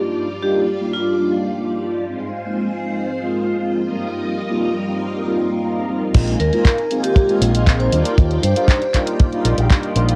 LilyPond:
<<
  \new Staff \with { instrumentName = "String machine" } { \time 4/4 \key ees \major \tempo 4 = 118 <g f' d''>1 | <aes f' c''>2.~ <aes f' c''>8 <g bes' ees''>8~ | <g bes' ees''>1 | <ees' bes' aes''>2.~ <ees' bes' aes''>8 <g' d'' g''>8~ |
<g' d'' g''>1 | }
  \new Staff \with { instrumentName = "Vibraphone" } { \time 4/4 \key ees \major r8. g'16 r8. f'8. r4. | r1 | r1 | r8 bes'4 r16 g'16 g'16 r4 c''16 r8 |
r8 c''4 r2 r8 | }
  \new Staff \with { instrumentName = "Analog polysynth" } { \time 4/4 \key ees \major <g bes d' ees' f'>8 r16 <g bes d' ees' f'>8 r16 <g bes d' ees' f'>8. <g bes d' ees' f'>8. <g bes d' ees' f'>8 <g bes d' ees' f'>8 | <aes bes c' ees' f'>8 r16 <aes bes c' ees' f'>8 r16 <aes bes c' ees' f'>8. <aes bes c' ees' f'>8. <aes bes c' ees' f'>8 <g bes c' ees' f'>8 | <g bes c' ees' f'>8 r16 <g bes c' ees' f'>8 r16 <g bes c' ees' f'>8. <g bes c' ees' f'>8 <g bes c' ees' f'>16 <g bes c' ees' f'>8 <g bes c' ees' f'>8 | <aes bes c' ees' f'>8 r16 <aes bes c' ees' f'>8 r16 <aes bes c' ees' f'>8. <aes bes c' ees' f'>8 <aes bes c' ees' f'>16 <aes bes c' ees' f'>8 <g bes d' ees' f'>8 |
<g bes d' ees' f'>8 r16 <g bes d' ees' f'>8 r16 <g bes d' ees' f'>8. <g bes d' ees' f'>8 <g bes d' ees' f'>16 <g bes d' ees' f'>8 <g bes d' ees' f'>8 | }
  \new Staff \with { instrumentName = "Fingered electric bass" } { \clef bass \time 4/4 \key ees \major r1 | r1 | r1 | bes,,8 ees,16 r4. r16 bes,,4 ees,16 r16 |
ees,8 g,16 r4. r16 bes,,16 bes,,16 r8 bes,,8 | }
  \new DrumStaff \with { instrumentName = "Drums" } \drummode { \time 4/4 r4 r4 r4 r4 | r4 r4 r4 r4 | r4 r4 r4 r4 | <cymc hh bd>16 hh16 hho16 hh16 <hc hh bd>16 hh16 hho16 hh16 <hh bd>16 hh16 hho16 hh16 <hc hh bd>16 hh16 hho16 hh16 |
<hh bd>16 hh16 hho16 hh16 <hc hh bd>16 hh16 <hc hho bd>16 hh16 <hh bd>16 hh16 hho16 hh16 <hc hh bd>16 hh16 hho16 hh16 | }
>>